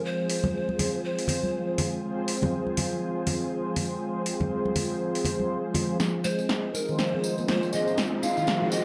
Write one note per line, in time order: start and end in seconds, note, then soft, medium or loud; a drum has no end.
0.00 5.96 F3 medium
0.00 2.01 G#3 medium
0.00 2.01 C4 medium
0.00 5.96 C4 medium
0.00 2.01 F4 medium
0.00 2.01 G#4 medium
0.00 5.96 G#4 medium
0.00 2.01 C5 medium
0.05 1.04 C5 loud
0.30 open hi-hat medium
0.44 high conga loud
0.44 low conga medium
0.69 high conga medium
0.79 open hi-hat medium
0.79 high conga medium
0.79 low conga medium
1.05 1.75 C5 medium
1.19 open hi-hat soft
1.28 open hi-hat medium
1.28 low conga medium
1.43 high conga medium
1.78 open hi-hat medium
1.78 low conga loud
2.03 5.97 G#3 medium
2.03 5.97 C4 medium
2.03 5.97 F4 medium
2.03 5.97 G#4 medium
2.03 5.97 C5 medium
2.28 open hi-hat medium
2.42 high conga loud
2.42 low conga loud
2.67 high conga medium
2.77 open hi-hat medium
2.77 high conga medium
2.77 low conga medium
3.26 open hi-hat medium
3.26 high conga medium
3.26 low conga medium
3.76 open hi-hat medium
3.76 low conga loud
4.26 open hi-hat medium
4.40 high conga medium
4.40 low conga medium
4.65 high conga medium
4.75 open hi-hat medium
4.75 high conga medium
4.75 low conga medium
5.15 open hi-hat soft
5.25 open hi-hat medium
5.25 low conga medium
5.40 high conga medium
5.74 open hi-hat medium
5.74 low conga loud
6.00 6.08 F3 loud
6.00 8.85 F3 medium
6.00 8.85 C4 medium
6.00 8.85 G#4 medium
6.00 snare soft
6.00 tambourine medium
6.00 riser medium
6.24 6.38 G#3 medium
6.24 6.75 C5 medium
6.24 tambourine medium
6.39 6.49 G#3 medium
6.39 tambourine soft
6.49 snare soft
6.49 tambourine soft
6.74 6.88 D#4 medium
6.74 6.98 A#4 medium
6.74 tambourine medium
6.88 6.98 D#3 medium
6.88 7.35 G#3 loud
6.88 7.35 C4 medium
6.88 7.35 F4 medium
6.88 7.35 G#4 medium
6.88 7.35 C5 loud
6.88 tambourine soft
6.99 7.12 F3 medium
6.99 7.45 C5 loud
6.99 snare medium
6.99 tambourine medium
7.14 7.19 G#3 loud
7.24 tambourine medium
7.38 7.71 G#3 medium
7.38 7.48 A#3 medium
7.38 7.71 C4 medium
7.38 7.71 F4 medium
7.38 7.71 G#4 medium
7.38 7.71 C5 medium
7.38 tambourine soft
7.48 7.57 F3 loud
7.48 7.75 C5 loud
7.48 snare medium
7.48 tambourine soft
7.63 tambourine soft
7.73 8.84 G#3 medium
7.73 7.87 G#3 loud
7.73 8.84 C4 medium
7.73 8.84 F4 medium
7.73 8.84 G#4 medium
7.73 8.84 C5 loud
7.73 7.98 D#5 loud
7.73 tambourine medium
7.87 7.98 G#3 medium
7.87 tambourine soft
7.98 snare medium
7.98 tambourine medium
8.23 8.37 D#4 medium
8.23 8.73 F5 medium
8.23 tambourine medium
8.37 8.47 D#3 medium
8.37 tambourine soft
8.47 8.61 F3 medium
8.47 snare medium
8.47 tambourine medium
8.62 8.68 G#3 loud
8.72 8.85 D#5 medium
8.72 tambourine loud